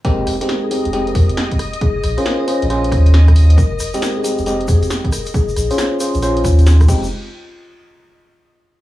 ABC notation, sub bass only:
X:1
M:4/4
L:1/16
Q:"Swing 16ths" 1/4=136
K:Fm
V:1 name="Sub bass" clef=bass
z2 F,,, z4 F,,,3 F,, z4 z | z2 B,,, z4 B,,,3 E,,6 | z2 F,,, z4 F,,,3 F,, z4 z | z2 B,,, z4 B,,,3 E,,4 F,,,2 |
z16 |]